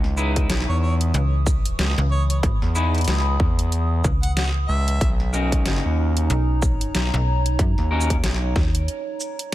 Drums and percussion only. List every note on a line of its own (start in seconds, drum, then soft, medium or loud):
0.04 snare soft
0.17 shaker medium
0.36 kick medium
0.36 closed hi-hat medium
0.50 snare loud
0.50 closed hi-hat medium
1.01 closed hi-hat medium
1.14 closed hi-hat medium
1.46 kick loud
1.46 shaker medium
1.65 closed hi-hat medium
1.79 snare loud
1.79 closed hi-hat soft
1.98 snare soft
2.30 closed hi-hat medium
2.43 kick loud
2.43 closed hi-hat medium
2.62 snare soft
2.76 shaker medium
2.94 closed hi-hat soft
2.98 closed hi-hat soft
3.01 closed hi-hat soft
3.04 snare loud
3.04 closed hi-hat medium
3.08 closed hi-hat medium
3.40 kick loud
3.59 closed hi-hat medium
3.72 closed hi-hat medium
4.04 kick loud
4.04 shaker medium
4.23 closed hi-hat medium
4.37 snare loud
4.37 closed hi-hat medium
4.88 closed hi-hat medium
5.01 kick loud
5.01 closed hi-hat medium
5.20 snare soft
5.34 shaker medium
5.52 kick medium
5.52 closed hi-hat medium
5.66 snare loud
5.66 closed hi-hat medium
6.17 closed hi-hat medium
6.30 closed hi-hat soft
6.62 kick loud
6.62 shaker medium
6.81 closed hi-hat medium
6.95 snare loud
6.95 closed hi-hat medium
7.14 snare soft
7.46 closed hi-hat medium
7.59 kick loud
7.59 closed hi-hat medium
7.78 snare soft
8.01 shaker medium
8.10 kick medium
8.10 closed hi-hat medium
8.24 snare loud
8.24 closed hi-hat medium
8.56 kick loud
8.56 snare medium
8.75 closed hi-hat medium
8.88 closed hi-hat medium
9.20 shaker medium
9.39 closed hi-hat medium